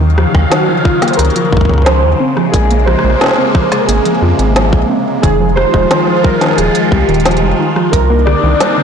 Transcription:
Already playing: analog synth bass D#2, analog synth pad C#3 D#3 F#3 F5
0.01 synth arpeggio sound D#3
0.18 synth arpeggio sound F3, cross-stick
0.35 analog synth bass D#2, synth arpeggio sound F#3, kick, cross-stick
0.50 synth arpeggio sound D#3, synth keys F#4, snare, closed hi-hat
0.68 synth arpeggio sound F3
0.83 synth keys F4, kick
1.02 synth arpeggio sound A#3, snare, closed hi-hat
1.08 synth keys C5, closed hi-hat
1.13 synth keys A#4, closed hi-hat
1.19 analog synth bass C#2, synth arpeggio sound D#3, cross-stick, closed hi-hat
1.25 closed hi-hat
1.30 closed hi-hat
1.36 synth arpeggio sound F3, closed hi-hat
1.52 analog synth bass A#1, synth arpeggio sound F#3, kick
1.57 kick
1.61 kick
1.65 kick
1.69 analog synth bass C#2, synth arpeggio sound D#3, kick
1.74 kick
1.78 kick
1.82 synth keys C5, kick
1.86 synth arpeggio sound F3, snare, closed hi-hat
2.03 analog synth bass D#2
2.20 analog synth pad C3 G#3 A#3, synth arpeggio sound C4
2.37 synth arpeggio sound F3, cross-stick
2.52 analog synth bass A#1, synth arpeggio sound G#3, synth keys G#4, kick, closed hi-hat
2.71 synth arpeggio sound A#3, closed hi-hat
2.85 synth arpeggio sound F3, synth keys C5, cross-stick
2.99 cross-stick
3.04 analog synth bass A#1, synth arpeggio sound G#3
3.10 cross-stick
3.21 snare, closed hi-hat
3.23 snare
3.26 snare
3.28 snare
3.31 snare
3.33 snare
3.36 synth arpeggio sound C4, snare
3.55 synth arpeggio sound F3, kick, cross-stick
3.72 synth arpeggio sound G#3, snare, closed hi-hat
3.80 synth keys A#4
3.87 analog synth bass G#1, synth arpeggio sound A#3, synth keys G#4, closed hi-hat
4.05 synth arpeggio sound F3, closed hi-hat
4.22 analog synth bass F2, synth arpeggio sound F4
4.39 analog synth bass G#1, synth arpeggio sound C4, closed hi-hat
4.56 synth arpeggio sound F3, snare, closed hi-hat
4.73 analog synth bass A#1, synth arpeggio sound F3, kick
4.90 synth arpeggio sound C4
5.22 analog synth bass F1, analog synth pad D#3 F3 G#3 F4, synth arpeggio sound D#3, synth keys G#4, kick, closed hi-hat
5.40 synth arpeggio sound F3
5.56 synth keys C5, cross-stick
5.74 analog synth bass F1, synth arpeggio sound G#3, kick, cross-stick
5.91 synth arpeggio sound D#3, snare, closed hi-hat
6.08 synth arpeggio sound F3
6.23 synth arpeggio sound G3, synth keys A#4, kick
6.41 synth arpeggio sound D#3, snare, closed hi-hat
6.44 snare
6.46 snare
6.49 snare
6.51 snare
6.53 snare
6.56 analog synth bass D#1, synth arpeggio sound F3, synth keys G#4, cross-stick, snare, closed hi-hat
6.75 closed hi-hat
6.90 analog synth bass C2, synth arpeggio sound G#3, synth keys G4, kick
7.09 analog synth bass D#1, synth arpeggio sound D#3, closed hi-hat
7.14 closed hi-hat
7.20 closed hi-hat
7.26 synth arpeggio sound F3, snare, closed hi-hat
7.31 closed hi-hat
7.37 closed hi-hat
7.42 analog synth bass F1, synth arpeggio sound G3
7.59 synth arpeggio sound D#3
7.76 synth arpeggio sound F3, cross-stick
7.92 analog synth bass C2, analog synth pad A#3 C4 D4 D#4, synth keys A#4, kick, closed hi-hat
8.10 synth arpeggio sound A#3
8.25 synth arpeggio sound D3, synth keys D5, cross-stick
8.44 analog synth bass C2, synth arpeggio sound D#3
8.60 synth arpeggio sound G3, snare, closed hi-hat
8.77 synth arpeggio sound D3

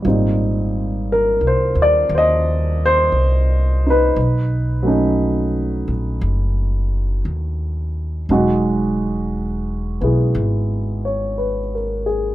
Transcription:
0.02 upright bass G#1, upright piano A#2 G3
0.07 upright piano C4 D#4
1.12 upright piano A#4
1.41 upright bass C2
1.47 upright piano C5
1.75 upright bass D#2
1.82 upright piano D5
2.09 upright bass D#2
2.15 upright piano C5 D#5
2.86 upright piano C5
3.12 upright bass C2
3.87 upright piano D#4 B4
4.16 upright bass B1
4.83 upright piano F#3 A3 C#4
4.87 upright piano D#4
5.88 upright bass A#1
6.21 upright bass F#1
7.25 upright bass D#2
8.29 upright bass E1, upright piano F#3 G#3 D#4 F#4
10.01 upright bass B1, upright piano B3 E4 G#4
10.35 upright bass G#1
11.05 upright piano C#5
11.38 upright piano B4
11.75 upright piano A#4
12.06 upright piano G#4

